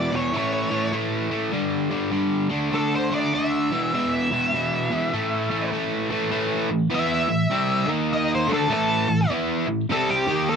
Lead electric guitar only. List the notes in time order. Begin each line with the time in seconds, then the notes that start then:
Already playing: D5
0.16 C#5
0.37 C#5
2.74 A4
2.96 C5
3.14 D5
3.35 E5
3.94 E5
6.95 E5
8.13 D#5
8.35 C5
8.53 A4
8.73 A4
9.92 A4
10.10 G4
10.49 A4